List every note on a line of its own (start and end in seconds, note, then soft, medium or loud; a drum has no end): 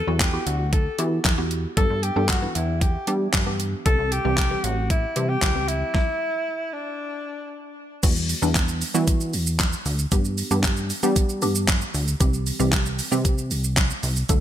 0.00 0.14 A4 loud
0.07 0.39 E2 medium
0.07 0.29 F#3 medium
0.07 0.29 B3 medium
0.07 0.29 E4 medium
0.07 0.29 F#4 medium
0.14 0.22 A4 medium
0.20 0.48 G4 medium
0.20 kick loud
0.20 snare medium
0.20 clap loud
0.20 closed hi-hat medium
0.33 0.87 B3 medium
0.33 0.87 E4 medium
0.33 0.87 F#4 medium
0.33 0.87 G4 medium
0.47 0.88 D2 medium
0.47 0.72 F#4 medium
0.47 closed hi-hat medium
0.73 0.97 A4 medium
0.73 kick loud
0.73 closed hi-hat medium
0.99 1.19 E3 medium
0.99 1.31 B3 medium
0.99 1.31 E4 medium
0.99 1.31 F#4 medium
0.99 1.31 G4 medium
0.99 closed hi-hat medium
1.25 1.66 E2 medium
1.25 kick loud
1.25 snare loud
1.25 clap loud
1.25 closed hi-hat medium
1.38 1.70 B3 medium
1.38 1.70 E4 medium
1.38 1.70 F#4 medium
1.38 1.70 G4 loud
1.51 closed hi-hat soft
1.77 1.87 G2 loud
1.77 2.09 E3 medium
1.77 2.09 B3 medium
1.77 2.09 D4 medium
1.77 2.09 G4 medium
1.77 2.04 A4 loud
1.77 kick loud
1.77 closed hi-hat medium
1.90 2.11 G2 medium
2.03 2.28 G4 loud
2.03 closed hi-hat medium
2.16 2.47 G2 medium
2.16 2.37 E3 medium
2.16 2.37 B3 medium
2.16 2.37 D4 medium
2.16 2.38 A4 medium
2.29 2.57 F#4 medium
2.29 kick loud
2.29 snare medium
2.29 clap loud
2.29 closed hi-hat medium
2.42 2.95 E3 medium
2.42 2.95 B3 medium
2.42 2.95 D4 medium
2.42 2.95 E4 medium
2.55 2.97 E2 medium
2.55 2.83 E4 medium
2.55 closed hi-hat medium
2.81 3.07 G4 medium
2.81 kick loud
2.81 closed hi-hat medium
3.07 3.39 E3 medium
3.07 3.28 G3 medium
3.07 3.39 B3 medium
3.07 3.39 D4 medium
3.07 3.39 G4 medium
3.07 closed hi-hat medium
3.33 3.75 G2 loud
3.33 kick loud
3.33 snare loud
3.33 clap loud
3.33 closed hi-hat medium
3.46 3.78 E3 medium
3.46 3.78 B3 medium
3.46 3.78 D4 medium
3.46 3.79 G4 medium
3.60 closed hi-hat medium
3.85 3.96 C2 loud
3.85 4.17 E3 medium
3.85 4.18 G3 medium
3.85 4.18 C4 medium
3.85 4.18 G4 medium
3.85 4.13 A4 loud
3.85 kick loud
3.85 closed hi-hat medium
3.99 4.19 C2 medium
4.12 4.66 G4 loud
4.12 closed hi-hat medium
4.25 4.56 C2 medium
4.25 4.46 E3 medium
4.25 4.46 G3 medium
4.25 4.46 C4 medium
4.25 4.46 G4 medium
4.37 kick loud
4.37 snare medium
4.37 clap loud
4.37 closed hi-hat medium
4.51 5.04 E3 medium
4.51 5.04 G3 medium
4.51 5.04 C4 medium
4.51 5.04 G4 medium
4.64 5.05 A1 medium
4.64 4.90 F#4 loud
4.64 closed hi-hat medium
4.90 5.31 E4 loud
4.90 kick loud
4.90 closed hi-hat medium
5.16 5.37 C3 medium
5.16 5.48 E3 medium
5.16 5.48 G3 medium
5.16 5.48 C4 medium
5.16 5.48 G4 medium
5.16 closed hi-hat medium
5.29 5.70 G4 loud
5.42 5.84 C#2 medium
5.42 kick loud
5.42 snare loud
5.42 clap loud
5.42 closed hi-hat medium
5.55 5.87 E3 medium
5.55 5.87 G3 medium
5.55 5.87 C4 medium
5.55 5.87 G4 medium
5.68 6.74 E4 loud
5.68 closed hi-hat soft
5.95 kick loud
5.95 snare medium
6.73 7.77 D4 medium
8.03 8.34 E2 loud
8.03 8.35 E3 medium
8.03 8.35 G3 medium
8.03 8.35 B3 medium
8.03 8.35 F#4 loud
8.03 kick loud
8.03 closed hi-hat medium
8.03 crash loud
8.03 shaker medium
8.16 shaker soft
8.29 open hi-hat medium
8.29 shaker medium
8.42 8.84 E2 loud
8.42 8.85 E3 medium
8.42 8.85 G3 medium
8.42 8.85 B3 medium
8.42 8.85 D4 loud
8.42 shaker medium
8.55 kick loud
8.55 snare medium
8.55 clap loud
8.55 closed hi-hat medium
8.55 shaker medium
8.68 shaker medium
8.81 open hi-hat medium
8.81 shaker medium
8.94 9.79 E3 medium
8.94 9.35 E3 medium
8.94 9.79 G3 medium
8.94 9.79 B3 medium
8.94 9.79 F#4 medium
8.94 shaker medium
9.08 kick loud
9.08 closed hi-hat medium
9.08 shaker medium
9.21 shaker medium
9.33 9.75 E2 loud
9.33 open hi-hat medium
9.33 shaker medium
9.47 shaker medium
9.59 kick loud
9.59 snare loud
9.59 clap loud
9.59 closed hi-hat medium
9.59 shaker medium
9.73 shaker medium
9.86 10.06 D2 medium
9.86 open hi-hat medium
9.86 shaker soft
9.99 shaker medium
10.12 10.43 G2 loud
10.12 10.44 E3 medium
10.12 10.44 B3 medium
10.12 10.44 D4 medium
10.12 10.44 G4 loud
10.12 kick loud
10.12 closed hi-hat medium
10.12 shaker medium
10.25 shaker soft
10.38 open hi-hat medium
10.38 shaker medium
10.51 10.92 G2 loud
10.51 10.93 E3 medium
10.51 10.93 B3 medium
10.51 10.93 D4 medium
10.51 10.94 G4 loud
10.51 shaker medium
10.63 kick loud
10.63 snare medium
10.63 clap loud
10.63 closed hi-hat medium
10.63 shaker medium
10.77 shaker medium
10.90 open hi-hat medium
10.90 shaker medium
11.03 11.35 E3 medium
11.03 11.44 G3 medium
11.03 11.35 B3 medium
11.03 11.35 D4 medium
11.03 11.35 G4 loud
11.03 shaker medium
11.16 kick loud
11.16 closed hi-hat medium
11.16 shaker medium
11.29 shaker medium
11.42 11.84 G2 loud
11.42 12.06 E3 medium
11.42 12.06 B3 medium
11.42 12.06 D4 medium
11.42 12.06 G4 loud
11.42 open hi-hat medium
11.42 shaker medium
11.55 shaker medium
11.68 kick loud
11.68 snare loud
11.68 clap loud
11.68 closed hi-hat medium
11.68 shaker medium
11.81 shaker medium
11.94 12.15 D2 medium
11.94 open hi-hat medium
11.94 shaker soft
12.08 shaker medium
12.20 12.52 C2 loud
12.20 12.52 E3 medium
12.20 12.52 G3 medium
12.20 12.52 C4 medium
12.20 12.53 G4 loud
12.20 kick loud
12.20 closed hi-hat medium
12.20 shaker medium
12.34 shaker soft
12.47 open hi-hat medium
12.47 shaker medium
12.59 13.01 C2 loud
12.59 13.02 E3 medium
12.59 13.02 G3 medium
12.59 13.02 C4 medium
12.59 13.02 G4 loud
12.59 shaker medium
12.72 kick loud
12.72 snare loud
12.72 clap loud
12.72 closed hi-hat medium
12.72 shaker medium
12.86 shaker medium
12.99 open hi-hat medium
12.99 shaker medium
13.11 13.52 C3 medium
13.11 13.97 E3 medium
13.11 13.97 G3 medium
13.11 13.97 C4 medium
13.11 13.97 G4 loud
13.11 shaker medium
13.25 kick loud
13.25 closed hi-hat medium
13.25 shaker medium
13.38 shaker medium
13.51 13.92 C2 loud
13.51 open hi-hat medium
13.51 shaker medium
13.64 shaker medium
13.77 kick loud
13.77 snare loud
13.77 clap loud
13.77 closed hi-hat medium
13.77 shaker medium
13.90 shaker medium
14.03 14.24 C2 medium
14.03 open hi-hat medium
14.03 shaker medium
14.16 shaker medium
14.29 14.40 D2 loud
14.29 14.40 G3 medium
14.29 14.40 A3 medium
14.29 14.40 D4 medium
14.29 14.40 A4 medium
14.29 kick loud
14.29 closed hi-hat medium
14.29 shaker medium